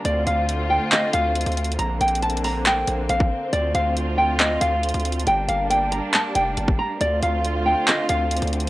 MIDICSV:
0, 0, Header, 1, 5, 480
1, 0, Start_track
1, 0, Key_signature, -1, "minor"
1, 0, Tempo, 434783
1, 56, Time_signature, 4, 2, 24, 8
1, 9601, End_track
2, 0, Start_track
2, 0, Title_t, "Nylon-string guitar"
2, 0, Program_c, 0, 24
2, 60, Note_on_c, 0, 74, 108
2, 273, Note_off_c, 0, 74, 0
2, 297, Note_on_c, 0, 77, 78
2, 511, Note_off_c, 0, 77, 0
2, 773, Note_on_c, 0, 79, 90
2, 989, Note_off_c, 0, 79, 0
2, 1017, Note_on_c, 0, 75, 82
2, 1231, Note_off_c, 0, 75, 0
2, 1254, Note_on_c, 0, 77, 83
2, 1932, Note_off_c, 0, 77, 0
2, 1973, Note_on_c, 0, 82, 90
2, 2189, Note_off_c, 0, 82, 0
2, 2218, Note_on_c, 0, 79, 77
2, 2432, Note_off_c, 0, 79, 0
2, 2457, Note_on_c, 0, 81, 83
2, 2671, Note_off_c, 0, 81, 0
2, 2698, Note_on_c, 0, 82, 82
2, 2912, Note_off_c, 0, 82, 0
2, 2942, Note_on_c, 0, 79, 88
2, 3390, Note_off_c, 0, 79, 0
2, 3417, Note_on_c, 0, 77, 90
2, 3868, Note_off_c, 0, 77, 0
2, 3894, Note_on_c, 0, 74, 111
2, 4110, Note_off_c, 0, 74, 0
2, 4136, Note_on_c, 0, 77, 80
2, 4351, Note_off_c, 0, 77, 0
2, 4612, Note_on_c, 0, 79, 85
2, 4828, Note_off_c, 0, 79, 0
2, 4856, Note_on_c, 0, 75, 84
2, 5071, Note_off_c, 0, 75, 0
2, 5089, Note_on_c, 0, 77, 82
2, 5769, Note_off_c, 0, 77, 0
2, 5821, Note_on_c, 0, 79, 103
2, 6033, Note_off_c, 0, 79, 0
2, 6055, Note_on_c, 0, 77, 77
2, 6270, Note_off_c, 0, 77, 0
2, 6294, Note_on_c, 0, 79, 89
2, 6510, Note_off_c, 0, 79, 0
2, 6535, Note_on_c, 0, 82, 82
2, 6750, Note_off_c, 0, 82, 0
2, 6784, Note_on_c, 0, 81, 87
2, 6995, Note_off_c, 0, 81, 0
2, 7012, Note_on_c, 0, 79, 77
2, 7465, Note_off_c, 0, 79, 0
2, 7494, Note_on_c, 0, 82, 92
2, 7709, Note_off_c, 0, 82, 0
2, 7741, Note_on_c, 0, 74, 110
2, 7953, Note_off_c, 0, 74, 0
2, 7977, Note_on_c, 0, 77, 78
2, 8191, Note_off_c, 0, 77, 0
2, 8453, Note_on_c, 0, 79, 91
2, 8669, Note_off_c, 0, 79, 0
2, 8696, Note_on_c, 0, 75, 78
2, 8911, Note_off_c, 0, 75, 0
2, 8934, Note_on_c, 0, 77, 81
2, 9601, Note_off_c, 0, 77, 0
2, 9601, End_track
3, 0, Start_track
3, 0, Title_t, "String section"
3, 0, Program_c, 1, 48
3, 54, Note_on_c, 1, 65, 90
3, 55, Note_on_c, 1, 50, 82
3, 55, Note_on_c, 1, 57, 72
3, 55, Note_on_c, 1, 60, 73
3, 1956, Note_off_c, 1, 50, 0
3, 1956, Note_off_c, 1, 57, 0
3, 1956, Note_off_c, 1, 60, 0
3, 1956, Note_off_c, 1, 65, 0
3, 1975, Note_on_c, 1, 50, 80
3, 1975, Note_on_c, 1, 58, 72
3, 1975, Note_on_c, 1, 60, 86
3, 3876, Note_off_c, 1, 50, 0
3, 3876, Note_off_c, 1, 58, 0
3, 3896, Note_on_c, 1, 50, 79
3, 3896, Note_on_c, 1, 57, 71
3, 3897, Note_on_c, 1, 65, 88
3, 5777, Note_off_c, 1, 60, 0
3, 5797, Note_off_c, 1, 50, 0
3, 5797, Note_off_c, 1, 57, 0
3, 5797, Note_off_c, 1, 65, 0
3, 5815, Note_on_c, 1, 58, 73
3, 5816, Note_on_c, 1, 55, 79
3, 5816, Note_on_c, 1, 62, 86
3, 7717, Note_off_c, 1, 55, 0
3, 7717, Note_off_c, 1, 58, 0
3, 7717, Note_off_c, 1, 62, 0
3, 7736, Note_on_c, 1, 50, 80
3, 7736, Note_on_c, 1, 57, 72
3, 7736, Note_on_c, 1, 60, 73
3, 7736, Note_on_c, 1, 65, 91
3, 9601, Note_off_c, 1, 50, 0
3, 9601, Note_off_c, 1, 57, 0
3, 9601, Note_off_c, 1, 60, 0
3, 9601, Note_off_c, 1, 65, 0
3, 9601, End_track
4, 0, Start_track
4, 0, Title_t, "808-style bass"
4, 0, Program_c, 2, 38
4, 55, Note_on_c, 2, 38, 118
4, 286, Note_off_c, 2, 38, 0
4, 295, Note_on_c, 2, 38, 101
4, 871, Note_off_c, 2, 38, 0
4, 1255, Note_on_c, 2, 38, 111
4, 1601, Note_off_c, 2, 38, 0
4, 1616, Note_on_c, 2, 38, 105
4, 1961, Note_off_c, 2, 38, 0
4, 1975, Note_on_c, 2, 34, 115
4, 2206, Note_off_c, 2, 34, 0
4, 2216, Note_on_c, 2, 34, 107
4, 3138, Note_off_c, 2, 34, 0
4, 3175, Note_on_c, 2, 34, 107
4, 3406, Note_off_c, 2, 34, 0
4, 3415, Note_on_c, 2, 34, 104
4, 3646, Note_off_c, 2, 34, 0
4, 3896, Note_on_c, 2, 38, 112
4, 4126, Note_off_c, 2, 38, 0
4, 4136, Note_on_c, 2, 38, 102
4, 5057, Note_off_c, 2, 38, 0
4, 5096, Note_on_c, 2, 38, 108
4, 5442, Note_off_c, 2, 38, 0
4, 5456, Note_on_c, 2, 38, 102
4, 5802, Note_off_c, 2, 38, 0
4, 5816, Note_on_c, 2, 31, 117
4, 6046, Note_off_c, 2, 31, 0
4, 6056, Note_on_c, 2, 31, 106
4, 6632, Note_off_c, 2, 31, 0
4, 7016, Note_on_c, 2, 29, 106
4, 7246, Note_off_c, 2, 29, 0
4, 7256, Note_on_c, 2, 31, 112
4, 7486, Note_off_c, 2, 31, 0
4, 7736, Note_on_c, 2, 38, 113
4, 7966, Note_off_c, 2, 38, 0
4, 7976, Note_on_c, 2, 38, 106
4, 8552, Note_off_c, 2, 38, 0
4, 8936, Note_on_c, 2, 38, 107
4, 9282, Note_off_c, 2, 38, 0
4, 9296, Note_on_c, 2, 38, 105
4, 9601, Note_off_c, 2, 38, 0
4, 9601, End_track
5, 0, Start_track
5, 0, Title_t, "Drums"
5, 56, Note_on_c, 9, 42, 78
5, 166, Note_off_c, 9, 42, 0
5, 296, Note_on_c, 9, 42, 76
5, 407, Note_off_c, 9, 42, 0
5, 539, Note_on_c, 9, 42, 81
5, 650, Note_off_c, 9, 42, 0
5, 1012, Note_on_c, 9, 42, 83
5, 1016, Note_on_c, 9, 39, 111
5, 1122, Note_off_c, 9, 42, 0
5, 1127, Note_off_c, 9, 39, 0
5, 1252, Note_on_c, 9, 42, 92
5, 1363, Note_off_c, 9, 42, 0
5, 1496, Note_on_c, 9, 42, 88
5, 1556, Note_off_c, 9, 42, 0
5, 1556, Note_on_c, 9, 42, 72
5, 1616, Note_off_c, 9, 42, 0
5, 1616, Note_on_c, 9, 42, 61
5, 1676, Note_off_c, 9, 42, 0
5, 1676, Note_on_c, 9, 42, 49
5, 1736, Note_off_c, 9, 42, 0
5, 1736, Note_on_c, 9, 42, 69
5, 1816, Note_off_c, 9, 42, 0
5, 1816, Note_on_c, 9, 42, 72
5, 1896, Note_off_c, 9, 42, 0
5, 1896, Note_on_c, 9, 42, 71
5, 1976, Note_off_c, 9, 42, 0
5, 1976, Note_on_c, 9, 42, 80
5, 2086, Note_off_c, 9, 42, 0
5, 2216, Note_on_c, 9, 42, 62
5, 2296, Note_off_c, 9, 42, 0
5, 2296, Note_on_c, 9, 42, 64
5, 2376, Note_off_c, 9, 42, 0
5, 2376, Note_on_c, 9, 42, 66
5, 2456, Note_off_c, 9, 42, 0
5, 2456, Note_on_c, 9, 42, 64
5, 2536, Note_off_c, 9, 42, 0
5, 2536, Note_on_c, 9, 42, 65
5, 2616, Note_off_c, 9, 42, 0
5, 2616, Note_on_c, 9, 42, 64
5, 2696, Note_on_c, 9, 46, 54
5, 2726, Note_off_c, 9, 42, 0
5, 2807, Note_off_c, 9, 46, 0
5, 2932, Note_on_c, 9, 42, 81
5, 2936, Note_on_c, 9, 39, 108
5, 3042, Note_off_c, 9, 42, 0
5, 3047, Note_off_c, 9, 39, 0
5, 3172, Note_on_c, 9, 42, 83
5, 3283, Note_off_c, 9, 42, 0
5, 3414, Note_on_c, 9, 42, 83
5, 3525, Note_off_c, 9, 42, 0
5, 3535, Note_on_c, 9, 36, 90
5, 3645, Note_off_c, 9, 36, 0
5, 3896, Note_on_c, 9, 42, 83
5, 4006, Note_off_c, 9, 42, 0
5, 4136, Note_on_c, 9, 42, 74
5, 4247, Note_off_c, 9, 42, 0
5, 4379, Note_on_c, 9, 42, 78
5, 4490, Note_off_c, 9, 42, 0
5, 4851, Note_on_c, 9, 42, 86
5, 4856, Note_on_c, 9, 39, 107
5, 4962, Note_off_c, 9, 42, 0
5, 4967, Note_off_c, 9, 39, 0
5, 5092, Note_on_c, 9, 42, 90
5, 5203, Note_off_c, 9, 42, 0
5, 5336, Note_on_c, 9, 42, 89
5, 5396, Note_off_c, 9, 42, 0
5, 5396, Note_on_c, 9, 42, 71
5, 5456, Note_off_c, 9, 42, 0
5, 5456, Note_on_c, 9, 42, 60
5, 5516, Note_off_c, 9, 42, 0
5, 5516, Note_on_c, 9, 42, 49
5, 5576, Note_off_c, 9, 42, 0
5, 5576, Note_on_c, 9, 42, 71
5, 5656, Note_off_c, 9, 42, 0
5, 5656, Note_on_c, 9, 42, 69
5, 5736, Note_off_c, 9, 42, 0
5, 5736, Note_on_c, 9, 42, 72
5, 5816, Note_off_c, 9, 42, 0
5, 5816, Note_on_c, 9, 42, 79
5, 5926, Note_off_c, 9, 42, 0
5, 6056, Note_on_c, 9, 42, 78
5, 6167, Note_off_c, 9, 42, 0
5, 6299, Note_on_c, 9, 42, 81
5, 6410, Note_off_c, 9, 42, 0
5, 6536, Note_on_c, 9, 42, 77
5, 6647, Note_off_c, 9, 42, 0
5, 6772, Note_on_c, 9, 42, 82
5, 6776, Note_on_c, 9, 39, 108
5, 6882, Note_off_c, 9, 42, 0
5, 6887, Note_off_c, 9, 39, 0
5, 7012, Note_on_c, 9, 42, 84
5, 7123, Note_off_c, 9, 42, 0
5, 7254, Note_on_c, 9, 42, 85
5, 7365, Note_off_c, 9, 42, 0
5, 7374, Note_on_c, 9, 36, 93
5, 7485, Note_off_c, 9, 36, 0
5, 7736, Note_on_c, 9, 42, 84
5, 7846, Note_off_c, 9, 42, 0
5, 7976, Note_on_c, 9, 42, 76
5, 8087, Note_off_c, 9, 42, 0
5, 8219, Note_on_c, 9, 42, 78
5, 8329, Note_off_c, 9, 42, 0
5, 8692, Note_on_c, 9, 42, 84
5, 8697, Note_on_c, 9, 39, 111
5, 8802, Note_off_c, 9, 42, 0
5, 8807, Note_off_c, 9, 39, 0
5, 8932, Note_on_c, 9, 42, 90
5, 9042, Note_off_c, 9, 42, 0
5, 9175, Note_on_c, 9, 42, 84
5, 9236, Note_off_c, 9, 42, 0
5, 9236, Note_on_c, 9, 42, 74
5, 9296, Note_off_c, 9, 42, 0
5, 9296, Note_on_c, 9, 42, 61
5, 9356, Note_off_c, 9, 42, 0
5, 9356, Note_on_c, 9, 42, 48
5, 9416, Note_off_c, 9, 42, 0
5, 9416, Note_on_c, 9, 42, 69
5, 9496, Note_off_c, 9, 42, 0
5, 9496, Note_on_c, 9, 42, 70
5, 9601, Note_off_c, 9, 42, 0
5, 9601, End_track
0, 0, End_of_file